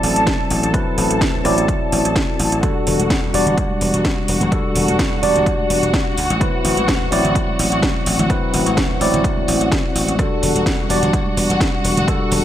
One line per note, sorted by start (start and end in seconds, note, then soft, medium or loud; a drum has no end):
0.00 0.13 A1 loud
0.00 0.71 F#3 medium
0.00 0.71 C4 medium
0.00 0.72 E4 medium
0.00 2.64 A4 medium
0.00 0.72 D5 medium
0.00 2.64 A5 medium
0.00 open hi-hat loud
0.16 0.24 A1 medium
0.16 closed hi-hat medium
0.27 kick loud
0.27 snare loud
0.27 closed hi-hat medium
0.50 0.60 A1 medium
0.50 open hi-hat loud
0.63 0.72 A1 loud
0.63 closed hi-hat medium
0.73 0.84 D2 loud
0.73 1.42 F#3 medium
0.73 1.42 C4 medium
0.73 1.42 E4 medium
0.73 1.43 B4 medium
0.73 kick loud
0.73 cross-stick medium
0.73 closed hi-hat medium
0.98 1.08 A1 medium
0.98 open hi-hat loud
1.10 1.19 A1 medium
1.10 closed hi-hat medium
1.21 kick loud
1.21 snare loud
1.21 closed hi-hat medium
1.44 1.55 A1 loud
1.44 2.60 F#3 medium
1.44 2.60 C4 medium
1.44 2.61 E4 medium
1.44 2.61 D5 medium
1.44 cross-stick medium
1.44 open hi-hat loud
1.58 1.66 A1 medium
1.58 closed hi-hat medium
1.68 kick loud
1.68 closed hi-hat medium
1.92 2.02 A1 loud
1.92 open hi-hat loud
2.05 2.13 A1 loud
2.05 closed hi-hat medium
2.16 2.26 D2 loud
2.16 kick loud
2.16 snare loud
2.16 closed hi-hat medium
2.39 2.49 A1 medium
2.39 open hi-hat loud
2.52 2.61 A1 medium
2.52 closed hi-hat medium
2.62 3.31 G3 medium
2.62 3.31 D4 medium
2.62 10.18 F#4 medium
2.62 3.31 F#4 medium
2.62 3.32 A4 medium
2.62 10.18 F#5 medium
2.62 kick loud
2.62 cross-stick medium
2.62 closed hi-hat medium
2.62 tambourine soft
2.87 2.97 E1 medium
2.87 open hi-hat loud
2.87 tambourine medium
2.87 low conga medium
2.99 3.08 E1 medium
2.99 closed hi-hat medium
2.99 tambourine medium
2.99 high conga medium
3.10 kick loud
3.10 snare loud
3.10 closed hi-hat medium
3.33 3.44 E1 loud
3.33 4.49 G3 medium
3.33 4.49 D4 medium
3.33 4.50 F#4 medium
3.33 4.50 D5 medium
3.33 open hi-hat loud
3.33 tambourine loud
3.46 3.55 E1 medium
3.46 closed hi-hat medium
3.46 tambourine medium
3.46 low conga loud
3.57 kick loud
3.57 closed hi-hat medium
3.57 tambourine soft
3.70 high conga medium
3.81 3.91 E1 loud
3.81 open hi-hat loud
3.81 tambourine medium
3.94 4.02 E1 loud
3.94 closed hi-hat medium
3.94 tambourine medium
4.04 kick loud
4.04 snare loud
4.04 closed hi-hat medium
4.04 tambourine soft
4.04 high conga medium
4.28 4.38 E1 medium
4.28 open hi-hat loud
4.28 tambourine loud
4.40 4.50 E1 loud
4.40 closed hi-hat medium
4.40 tambourine medium
4.40 high conga medium
4.40 low conga medium
4.51 5.20 G3 medium
4.51 5.20 D4 medium
4.51 5.20 F#4 medium
4.51 5.21 A4 medium
4.51 kick loud
4.51 cross-stick medium
4.51 closed hi-hat medium
4.51 tambourine soft
4.75 4.86 E1 medium
4.75 open hi-hat loud
4.75 tambourine medium
4.75 low conga medium
4.88 4.97 E1 medium
4.88 closed hi-hat medium
4.88 tambourine medium
4.88 high conga loud
4.99 5.18 E2 loud
4.99 kick loud
4.99 snare loud
4.99 closed hi-hat medium
5.22 5.33 E1 loud
5.22 6.16 G3 medium
5.22 6.16 D4 medium
5.22 6.16 F#4 medium
5.22 6.16 D5 medium
5.22 open hi-hat loud
5.22 tambourine medium
5.22 high conga medium
5.36 5.44 E1 medium
5.36 closed hi-hat medium
5.36 tambourine medium
5.36 low conga medium
5.46 kick loud
5.46 closed hi-hat medium
5.59 high conga loud
5.70 5.80 E1 loud
5.70 open hi-hat loud
5.70 tambourine medium
5.83 5.91 E1 loud
5.83 closed hi-hat medium
5.83 tambourine medium
5.93 kick loud
5.93 snare loud
5.93 closed hi-hat medium
5.93 tambourine soft
5.93 high conga medium
6.17 6.27 D2 medium
6.17 open hi-hat loud
6.17 tambourine loud
6.30 6.39 A1 loud
6.30 closed hi-hat medium
6.30 tambourine medium
6.30 high conga medium
6.40 6.51 D2 loud
6.40 7.09 F#3 medium
6.40 7.09 C4 medium
6.40 7.09 E4 medium
6.40 7.10 B4 medium
6.40 kick loud
6.40 cross-stick medium
6.40 closed hi-hat medium
6.40 tambourine soft
6.64 6.74 A1 medium
6.64 open hi-hat loud
6.64 tambourine medium
6.64 low conga medium
6.77 6.86 A1 medium
6.77 closed hi-hat soft
6.77 tambourine soft
6.77 high conga loud
6.88 7.07 D2 loud
6.88 kick loud
6.88 snare loud
6.88 closed hi-hat medium
7.11 7.22 A1 loud
7.11 8.27 F#3 medium
7.11 8.27 C4 medium
7.11 8.27 E4 medium
7.11 8.28 D5 medium
7.11 open hi-hat loud
7.11 tambourine medium
7.24 7.33 A1 medium
7.24 closed hi-hat medium
7.24 tambourine soft
7.24 low conga loud
7.35 kick loud
7.35 closed hi-hat medium
7.35 tambourine soft
7.48 high conga medium
7.59 7.69 A1 loud
7.59 open hi-hat loud
7.59 tambourine medium
7.72 7.80 A1 medium
7.72 closed hi-hat medium
7.72 tambourine soft
7.83 7.93 D2 loud
7.83 kick loud
7.83 snare loud
7.83 closed hi-hat medium
7.83 tambourine soft
7.83 high conga medium
8.06 8.16 A1 medium
8.06 open hi-hat loud
8.06 tambourine medium
8.18 8.27 A1 medium
8.18 closed hi-hat soft
8.18 tambourine soft
8.18 high conga medium
8.18 low conga loud
8.29 8.98 F#3 medium
8.29 8.98 C4 medium
8.29 8.98 E4 medium
8.29 8.99 B4 medium
8.29 kick loud
8.29 cross-stick medium
8.29 closed hi-hat medium
8.29 tambourine soft
8.54 8.63 A1 medium
8.54 open hi-hat loud
8.54 tambourine medium
8.54 low conga medium
8.66 8.75 A1 medium
8.66 closed hi-hat medium
8.66 tambourine medium
8.66 high conga medium
8.77 8.96 D2 loud
8.77 kick loud
8.77 snare loud
8.77 closed hi-hat medium
9.00 9.11 A1 loud
9.00 10.16 F#3 medium
9.00 10.16 C4 medium
9.00 10.16 E4 medium
9.00 10.17 D5 medium
9.00 open hi-hat loud
9.00 tambourine medium
9.00 high conga medium
9.13 9.22 A1 medium
9.13 closed hi-hat medium
9.13 tambourine soft
9.13 low conga medium
9.24 kick loud
9.24 closed hi-hat medium
9.24 tambourine soft
9.37 high conga medium
9.48 9.58 A1 medium
9.48 open hi-hat loud
9.48 tambourine medium
9.61 9.72 A1 medium
9.61 closed hi-hat medium
9.61 tambourine medium
9.72 9.82 D2 medium
9.72 kick loud
9.72 snare loud
9.72 closed hi-hat medium
9.72 tambourine soft
9.72 high conga medium
9.95 10.05 A1 medium
9.95 open hi-hat loud
9.95 tambourine loud
10.07 10.17 A1 loud
10.07 closed hi-hat soft
10.07 tambourine soft
10.07 high conga medium
10.18 10.29 E2 loud
10.18 10.87 G3 medium
10.18 10.87 D4 medium
10.18 12.45 F#4 medium
10.18 10.87 F#4 medium
10.18 10.88 A4 medium
10.18 12.45 F#5 medium
10.18 kick loud
10.18 cross-stick medium
10.18 closed hi-hat medium
10.18 tambourine soft
10.42 10.52 E1 medium
10.42 open hi-hat loud
10.42 tambourine medium
10.42 low conga medium
10.55 10.64 E1 medium
10.55 closed hi-hat medium
10.55 tambourine soft
10.55 high conga medium
10.66 kick loud
10.66 snare loud
10.66 closed hi-hat medium
10.89 11.00 E1 loud
10.89 12.05 G3 medium
10.89 12.05 D4 medium
10.89 12.05 F#4 medium
10.89 12.06 D5 medium
10.89 open hi-hat loud
10.89 tambourine medium
10.89 high conga medium
11.03 11.11 E1 medium
11.03 closed hi-hat medium
11.03 tambourine medium
11.03 low conga medium
11.13 kick loud
11.13 closed hi-hat medium
11.26 high conga medium
11.37 11.47 E1 loud
11.37 open hi-hat loud
11.37 tambourine medium
11.50 11.58 E1 medium
11.50 closed hi-hat medium
11.50 tambourine soft
11.60 11.71 E2 loud
11.60 kick loud
11.60 snare loud
11.60 closed hi-hat medium
11.60 tambourine soft
11.60 high conga medium
11.84 11.94 E1 medium
11.84 open hi-hat loud
11.84 tambourine medium
11.97 12.05 E1 loud
11.97 closed hi-hat medium
11.97 tambourine medium
11.97 high conga medium
11.97 low conga medium
12.07 12.45 G3 medium
12.07 12.45 D4 medium
12.07 12.45 F#4 medium
12.07 12.45 A4 medium
12.07 kick loud
12.07 cross-stick medium
12.07 closed hi-hat medium
12.07 tambourine soft
12.31 12.41 E1 medium
12.31 open hi-hat loud
12.31 tambourine medium
12.31 low conga medium